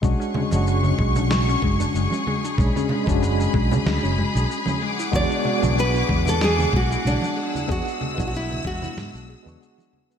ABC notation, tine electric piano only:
X:1
M:4/4
L:1/16
Q:"Swing 16ths" 1/4=94
K:Bdor
V:1 name="Tine electric piano"
[G,CDF]3 [G,CDF]12- [G,CDF] | [G,CDG]3 [G,CDF]8- [G,CDF]3 z2 | [G,B,DF]3 [G,B,DF]12- [G,B,DF] | [G,B,DG]3 [G,B,DF]8 [G,B,DF]4- [G,B,DF] |]